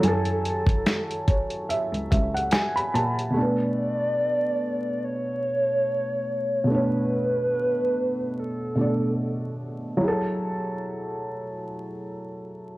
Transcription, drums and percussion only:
0.03 closed hi-hat medium
0.25 closed hi-hat soft
0.45 closed hi-hat medium
0.66 kick medium
0.66 closed hi-hat soft
0.86 snare loud
0.86 closed hi-hat medium
1.11 closed hi-hat soft
1.28 kick medium
1.28 closed hi-hat medium
1.50 closed hi-hat soft
1.70 closed hi-hat medium
1.94 closed hi-hat soft
2.12 kick medium
2.12 closed hi-hat medium
2.37 closed hi-hat medium
2.51 snare loud
2.51 closed hi-hat medium
2.77 closed hi-hat soft
2.95 closed hi-hat medium
3.19 closed hi-hat soft

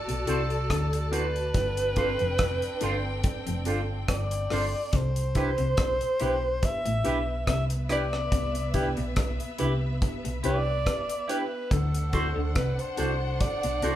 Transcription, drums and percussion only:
0.09 closed hi-hat medium
0.27 closed hi-hat medium
0.50 closed hi-hat soft
0.70 kick medium
0.70 cross-stick loud
0.70 closed hi-hat medium
0.93 closed hi-hat medium
1.13 closed hi-hat medium
1.36 closed hi-hat soft
1.54 kick loud
1.54 closed hi-hat medium
1.77 closed hi-hat medium
1.96 kick medium
1.96 closed hi-hat medium
2.19 closed hi-hat soft
2.39 kick loud
2.39 cross-stick loud
2.39 closed hi-hat medium
2.62 closed hi-hat medium
2.81 closed hi-hat medium
3.24 kick loud
3.24 closed hi-hat medium
3.47 closed hi-hat medium
3.65 closed hi-hat medium
4.08 kick loud
4.08 cross-stick loud
4.08 closed hi-hat medium
4.31 closed hi-hat medium
4.50 cross-stick medium
4.50 open hi-hat medium
4.93 kick loud
4.93 closed hi-hat medium
5.16 closed hi-hat medium
5.35 kick medium
5.35 closed hi-hat medium
5.58 closed hi-hat soft
5.77 kick loud
5.77 cross-stick loud
5.77 closed hi-hat medium
6.01 closed hi-hat soft
6.20 closed hi-hat medium
6.63 kick loud
6.63 closed hi-hat medium
6.86 closed hi-hat medium
7.05 closed hi-hat medium
7.47 kick medium
7.47 cross-stick loud
7.47 closed hi-hat loud
7.70 closed hi-hat medium
7.89 cross-stick medium
7.89 closed hi-hat medium
8.13 cross-stick medium
8.32 kick loud
8.32 closed hi-hat medium
8.55 closed hi-hat medium
8.74 kick medium
8.74 closed hi-hat medium
8.97 closed hi-hat soft
9.16 kick loud
9.16 cross-stick loud
9.16 closed hi-hat medium
9.40 closed hi-hat soft
9.58 closed hi-hat medium
10.02 kick loud
10.02 closed hi-hat medium
10.25 closed hi-hat medium
10.44 closed hi-hat medium
10.86 kick medium
10.86 cross-stick loud
10.86 closed hi-hat medium
11.09 closed hi-hat medium
11.29 closed hi-hat medium
11.71 kick loud
11.71 closed hi-hat medium
11.94 closed hi-hat medium
12.13 kick medium
12.13 closed hi-hat medium
12.56 kick loud
12.56 cross-stick loud
12.56 closed hi-hat medium
12.79 closed hi-hat soft
12.97 closed hi-hat medium
13.41 kick loud
13.41 closed hi-hat medium
13.63 closed hi-hat medium
13.82 closed hi-hat medium

